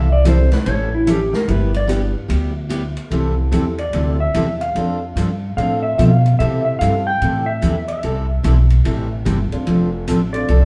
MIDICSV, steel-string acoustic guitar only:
0, 0, Header, 1, 2, 480
1, 0, Start_track
1, 0, Key_signature, 0, "major"
1, 0, Tempo, 408998
1, 1740, Time_signature, 4, 2, 24, 8
1, 12499, End_track
2, 0, Start_track
2, 0, Title_t, "Steel-string acoustic guitar"
2, 0, Program_c, 0, 25
2, 291, Note_on_c, 0, 48, 78
2, 292, Note_on_c, 0, 52, 84
2, 301, Note_on_c, 0, 60, 84
2, 305, Note_on_c, 0, 55, 75
2, 308, Note_on_c, 0, 69, 83
2, 310, Note_on_c, 0, 64, 80
2, 432, Note_off_c, 0, 48, 0
2, 432, Note_off_c, 0, 52, 0
2, 437, Note_off_c, 0, 60, 0
2, 438, Note_off_c, 0, 55, 0
2, 440, Note_off_c, 0, 69, 0
2, 441, Note_off_c, 0, 64, 0
2, 774, Note_on_c, 0, 52, 61
2, 776, Note_on_c, 0, 55, 57
2, 780, Note_on_c, 0, 61, 60
2, 788, Note_on_c, 0, 64, 60
2, 790, Note_on_c, 0, 69, 67
2, 1033, Note_off_c, 0, 52, 0
2, 1034, Note_off_c, 0, 55, 0
2, 1036, Note_off_c, 0, 61, 0
2, 1040, Note_off_c, 0, 64, 0
2, 1041, Note_off_c, 0, 69, 0
2, 1253, Note_on_c, 0, 52, 84
2, 1257, Note_on_c, 0, 55, 85
2, 1264, Note_on_c, 0, 61, 84
2, 1264, Note_on_c, 0, 64, 96
2, 1272, Note_on_c, 0, 69, 89
2, 1392, Note_off_c, 0, 52, 0
2, 1394, Note_off_c, 0, 55, 0
2, 1398, Note_off_c, 0, 61, 0
2, 1398, Note_off_c, 0, 64, 0
2, 1402, Note_off_c, 0, 69, 0
2, 1737, Note_on_c, 0, 55, 55
2, 1741, Note_on_c, 0, 59, 60
2, 1749, Note_on_c, 0, 64, 65
2, 1755, Note_on_c, 0, 67, 58
2, 1994, Note_off_c, 0, 55, 0
2, 1997, Note_off_c, 0, 59, 0
2, 2001, Note_off_c, 0, 64, 0
2, 2003, Note_off_c, 0, 67, 0
2, 2201, Note_on_c, 0, 55, 82
2, 2211, Note_on_c, 0, 59, 83
2, 2218, Note_on_c, 0, 64, 84
2, 2218, Note_on_c, 0, 67, 85
2, 2346, Note_off_c, 0, 55, 0
2, 2351, Note_off_c, 0, 59, 0
2, 2354, Note_off_c, 0, 64, 0
2, 2355, Note_off_c, 0, 67, 0
2, 2680, Note_on_c, 0, 55, 55
2, 2688, Note_on_c, 0, 59, 55
2, 2693, Note_on_c, 0, 64, 63
2, 2697, Note_on_c, 0, 67, 69
2, 2946, Note_off_c, 0, 55, 0
2, 2950, Note_off_c, 0, 59, 0
2, 2952, Note_off_c, 0, 64, 0
2, 2954, Note_off_c, 0, 67, 0
2, 3161, Note_on_c, 0, 55, 74
2, 3165, Note_on_c, 0, 59, 88
2, 3172, Note_on_c, 0, 64, 75
2, 3174, Note_on_c, 0, 67, 82
2, 3306, Note_off_c, 0, 55, 0
2, 3308, Note_off_c, 0, 59, 0
2, 3311, Note_off_c, 0, 64, 0
2, 3313, Note_off_c, 0, 67, 0
2, 3650, Note_on_c, 0, 48, 48
2, 3653, Note_on_c, 0, 52, 55
2, 3655, Note_on_c, 0, 55, 55
2, 3661, Note_on_c, 0, 64, 52
2, 3664, Note_on_c, 0, 60, 54
2, 3665, Note_on_c, 0, 69, 60
2, 3911, Note_off_c, 0, 48, 0
2, 3912, Note_off_c, 0, 52, 0
2, 3913, Note_off_c, 0, 55, 0
2, 3917, Note_off_c, 0, 64, 0
2, 3918, Note_off_c, 0, 60, 0
2, 3918, Note_off_c, 0, 69, 0
2, 4126, Note_on_c, 0, 52, 74
2, 4127, Note_on_c, 0, 48, 63
2, 4130, Note_on_c, 0, 55, 69
2, 4130, Note_on_c, 0, 60, 71
2, 4134, Note_on_c, 0, 64, 73
2, 4138, Note_on_c, 0, 69, 79
2, 4268, Note_off_c, 0, 52, 0
2, 4269, Note_off_c, 0, 48, 0
2, 4270, Note_off_c, 0, 55, 0
2, 4270, Note_off_c, 0, 60, 0
2, 4273, Note_off_c, 0, 64, 0
2, 4275, Note_off_c, 0, 69, 0
2, 4612, Note_on_c, 0, 48, 51
2, 4621, Note_on_c, 0, 52, 50
2, 4624, Note_on_c, 0, 55, 51
2, 4624, Note_on_c, 0, 60, 60
2, 4628, Note_on_c, 0, 64, 56
2, 4631, Note_on_c, 0, 69, 60
2, 4872, Note_off_c, 0, 48, 0
2, 4877, Note_off_c, 0, 52, 0
2, 4878, Note_off_c, 0, 55, 0
2, 4878, Note_off_c, 0, 60, 0
2, 4881, Note_off_c, 0, 64, 0
2, 4882, Note_off_c, 0, 69, 0
2, 5094, Note_on_c, 0, 48, 75
2, 5101, Note_on_c, 0, 52, 70
2, 5102, Note_on_c, 0, 55, 78
2, 5106, Note_on_c, 0, 60, 82
2, 5106, Note_on_c, 0, 64, 78
2, 5114, Note_on_c, 0, 69, 81
2, 5233, Note_off_c, 0, 48, 0
2, 5237, Note_off_c, 0, 52, 0
2, 5237, Note_off_c, 0, 55, 0
2, 5239, Note_off_c, 0, 60, 0
2, 5239, Note_off_c, 0, 64, 0
2, 5243, Note_off_c, 0, 69, 0
2, 5580, Note_on_c, 0, 53, 54
2, 5583, Note_on_c, 0, 60, 55
2, 5587, Note_on_c, 0, 62, 52
2, 5593, Note_on_c, 0, 69, 59
2, 5837, Note_off_c, 0, 53, 0
2, 5838, Note_off_c, 0, 60, 0
2, 5840, Note_off_c, 0, 62, 0
2, 5843, Note_off_c, 0, 69, 0
2, 6063, Note_on_c, 0, 53, 71
2, 6069, Note_on_c, 0, 60, 75
2, 6077, Note_on_c, 0, 62, 85
2, 6079, Note_on_c, 0, 69, 77
2, 6198, Note_off_c, 0, 53, 0
2, 6201, Note_off_c, 0, 60, 0
2, 6205, Note_off_c, 0, 62, 0
2, 6206, Note_off_c, 0, 69, 0
2, 6553, Note_on_c, 0, 53, 57
2, 6558, Note_on_c, 0, 60, 54
2, 6561, Note_on_c, 0, 62, 62
2, 6569, Note_on_c, 0, 69, 64
2, 6804, Note_off_c, 0, 53, 0
2, 6806, Note_off_c, 0, 60, 0
2, 6808, Note_off_c, 0, 62, 0
2, 6812, Note_off_c, 0, 69, 0
2, 7023, Note_on_c, 0, 53, 77
2, 7034, Note_on_c, 0, 60, 85
2, 7035, Note_on_c, 0, 62, 80
2, 7040, Note_on_c, 0, 69, 75
2, 7158, Note_off_c, 0, 53, 0
2, 7164, Note_off_c, 0, 60, 0
2, 7165, Note_off_c, 0, 62, 0
2, 7167, Note_off_c, 0, 69, 0
2, 7511, Note_on_c, 0, 48, 52
2, 7515, Note_on_c, 0, 60, 54
2, 7517, Note_on_c, 0, 52, 56
2, 7518, Note_on_c, 0, 55, 55
2, 7522, Note_on_c, 0, 64, 58
2, 7522, Note_on_c, 0, 69, 65
2, 7763, Note_off_c, 0, 48, 0
2, 7765, Note_off_c, 0, 60, 0
2, 7766, Note_off_c, 0, 52, 0
2, 7767, Note_off_c, 0, 55, 0
2, 7769, Note_off_c, 0, 64, 0
2, 7769, Note_off_c, 0, 69, 0
2, 7998, Note_on_c, 0, 48, 80
2, 7999, Note_on_c, 0, 52, 71
2, 8005, Note_on_c, 0, 55, 76
2, 8007, Note_on_c, 0, 64, 85
2, 8011, Note_on_c, 0, 60, 83
2, 8012, Note_on_c, 0, 69, 84
2, 8126, Note_off_c, 0, 48, 0
2, 8127, Note_off_c, 0, 52, 0
2, 8130, Note_off_c, 0, 55, 0
2, 8131, Note_off_c, 0, 64, 0
2, 8133, Note_off_c, 0, 60, 0
2, 8133, Note_off_c, 0, 69, 0
2, 8471, Note_on_c, 0, 48, 58
2, 8478, Note_on_c, 0, 52, 51
2, 8482, Note_on_c, 0, 55, 51
2, 8482, Note_on_c, 0, 60, 51
2, 8485, Note_on_c, 0, 64, 61
2, 8492, Note_on_c, 0, 69, 63
2, 8724, Note_off_c, 0, 48, 0
2, 8727, Note_off_c, 0, 52, 0
2, 8729, Note_off_c, 0, 55, 0
2, 8729, Note_off_c, 0, 60, 0
2, 8731, Note_off_c, 0, 64, 0
2, 8734, Note_off_c, 0, 69, 0
2, 8937, Note_on_c, 0, 48, 76
2, 8944, Note_on_c, 0, 55, 83
2, 8945, Note_on_c, 0, 60, 82
2, 8947, Note_on_c, 0, 52, 74
2, 8950, Note_on_c, 0, 64, 89
2, 8958, Note_on_c, 0, 69, 87
2, 9076, Note_off_c, 0, 48, 0
2, 9079, Note_off_c, 0, 55, 0
2, 9080, Note_off_c, 0, 60, 0
2, 9081, Note_off_c, 0, 52, 0
2, 9083, Note_off_c, 0, 64, 0
2, 9087, Note_off_c, 0, 69, 0
2, 9425, Note_on_c, 0, 48, 55
2, 9429, Note_on_c, 0, 52, 55
2, 9430, Note_on_c, 0, 55, 54
2, 9433, Note_on_c, 0, 60, 57
2, 9434, Note_on_c, 0, 64, 56
2, 9440, Note_on_c, 0, 69, 59
2, 9681, Note_off_c, 0, 48, 0
2, 9683, Note_off_c, 0, 52, 0
2, 9683, Note_off_c, 0, 55, 0
2, 9685, Note_off_c, 0, 60, 0
2, 9685, Note_off_c, 0, 64, 0
2, 9688, Note_off_c, 0, 69, 0
2, 9897, Note_on_c, 0, 48, 66
2, 9902, Note_on_c, 0, 52, 67
2, 9908, Note_on_c, 0, 55, 81
2, 9910, Note_on_c, 0, 60, 77
2, 9912, Note_on_c, 0, 64, 83
2, 9916, Note_on_c, 0, 69, 85
2, 10036, Note_off_c, 0, 48, 0
2, 10039, Note_off_c, 0, 52, 0
2, 10042, Note_off_c, 0, 55, 0
2, 10043, Note_off_c, 0, 60, 0
2, 10044, Note_off_c, 0, 64, 0
2, 10046, Note_off_c, 0, 69, 0
2, 10377, Note_on_c, 0, 48, 54
2, 10385, Note_on_c, 0, 52, 57
2, 10389, Note_on_c, 0, 55, 54
2, 10392, Note_on_c, 0, 60, 54
2, 10394, Note_on_c, 0, 64, 57
2, 10395, Note_on_c, 0, 69, 55
2, 10637, Note_off_c, 0, 48, 0
2, 10641, Note_off_c, 0, 52, 0
2, 10643, Note_off_c, 0, 55, 0
2, 10644, Note_off_c, 0, 60, 0
2, 10645, Note_off_c, 0, 64, 0
2, 10646, Note_off_c, 0, 69, 0
2, 10858, Note_on_c, 0, 48, 74
2, 10860, Note_on_c, 0, 52, 81
2, 10863, Note_on_c, 0, 55, 72
2, 10867, Note_on_c, 0, 60, 80
2, 10868, Note_on_c, 0, 64, 76
2, 10872, Note_on_c, 0, 69, 78
2, 10997, Note_off_c, 0, 48, 0
2, 10998, Note_off_c, 0, 52, 0
2, 10999, Note_off_c, 0, 55, 0
2, 11001, Note_off_c, 0, 60, 0
2, 11002, Note_off_c, 0, 64, 0
2, 11004, Note_off_c, 0, 69, 0
2, 11342, Note_on_c, 0, 53, 53
2, 11350, Note_on_c, 0, 60, 52
2, 11357, Note_on_c, 0, 62, 58
2, 11359, Note_on_c, 0, 69, 60
2, 11599, Note_off_c, 0, 53, 0
2, 11603, Note_off_c, 0, 60, 0
2, 11607, Note_off_c, 0, 62, 0
2, 11608, Note_off_c, 0, 69, 0
2, 11824, Note_on_c, 0, 53, 77
2, 11828, Note_on_c, 0, 60, 75
2, 11835, Note_on_c, 0, 62, 81
2, 11837, Note_on_c, 0, 69, 81
2, 11959, Note_off_c, 0, 53, 0
2, 11962, Note_off_c, 0, 60, 0
2, 11965, Note_off_c, 0, 62, 0
2, 11966, Note_off_c, 0, 69, 0
2, 12302, Note_on_c, 0, 53, 53
2, 12312, Note_on_c, 0, 60, 49
2, 12316, Note_on_c, 0, 62, 57
2, 12322, Note_on_c, 0, 69, 68
2, 12499, Note_off_c, 0, 53, 0
2, 12499, Note_off_c, 0, 60, 0
2, 12499, Note_off_c, 0, 62, 0
2, 12499, Note_off_c, 0, 69, 0
2, 12499, End_track
0, 0, End_of_file